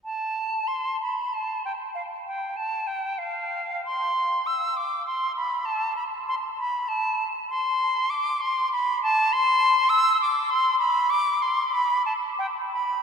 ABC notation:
X:1
M:3/4
L:1/8
Q:1/4=98
K:Am
V:1 name="Flute"
a2 c' b a g | f g a g f2 | c'2 e' d' c' b | a b c' b a z |
[K:C] c'2 d' c' b a | c'2 e' d' c' b | d' c' b a g b |]